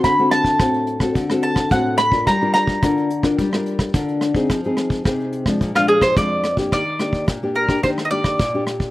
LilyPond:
<<
  \new Staff \with { instrumentName = "Mandolin" } { \time 4/4 \key ees \major \tempo 4 = 108 ces'''8 a''4. r8 a''8 fis''8 ces'''8 | bes''8 bes''4. r2 | r2 r16 f'16 aes'16 c''16 d''8. r16 | d''4 r8 bes'8 c''16. ees''32 d''4 r8 | }
  \new Staff \with { instrumentName = "Nylon-string guitar" } { \time 4/4 \key ees \major << { <c' ges' a'>16 <c' fis' a'>8. <c' fis' a'>8. <c' fis' a'>8 <c' fis' a'>8. <c' fis' a'>8 r16 <d' f' bes'>16~ | <d' f' bes'>16 <d' f' bes'>8. <d' f' bes'>8 r16 <d' f' bes'>8 <d' f' bes'>8. <d' f' bes'>8. <c' ees' aes'>16~ | <c' ees' aes'>16 <c' ees' aes'>8. <c' ees' aes'>8. <f aes d'>8 <f aes d'>8. <f aes d'>8 r16 <bes d' g'>16~ | <bes d' g'>16 r16 <bes d' g'>8. <bes d' g'>8 <bes d' g'>16 <bes d' g'>16 r16 <bes d' g'>8 r16 <bes d' g'>8. | } \\ { d4 a,4 d4 a,4 | g4 d4 g4 d4 | f4 c4 bes,4 f,4 | ees4 bes,4 ees4 bes,4 | } >> }
  \new DrumStaff \with { instrumentName = "Drums" } \drummode { \time 4/4 <hh bd ss>16 hh16 <hh ss>16 <hh bd>16 <hh bd ss>16 hh16 hh16 <hh bd ss>16 <hh bd>16 ss16 hh16 <hh bd ss>16 <hh bd>8 <hh ss>16 <hh bd>16 | <hh bd ss>16 hh16 <hh ss>16 bd16 <hh bd ss>16 hh16 hh16 <hh bd ss>16 <hh bd>16 ss16 hh16 <bd ss>16 <hh bd>16 hh16 <hh ss>16 <hh bd>16 | <hh bd ss>16 hh16 <hh ss>16 <hh bd>16 <hh bd ss>16 hh16 hh16 <hh bd ss>16 <hh bd>16 ss16 hh16 <bd ss>16 <hh bd>8 <hh ss>16 <hh bd>16 | <hh bd ss>8 <hh ss>16 bd16 <hh bd ss>8 hh16 <bd ss>16 <hh bd>16 ss16 hh16 <hh bd ss>16 <hh bd>8 <hh ss>16 <hh bd>16 | }
>>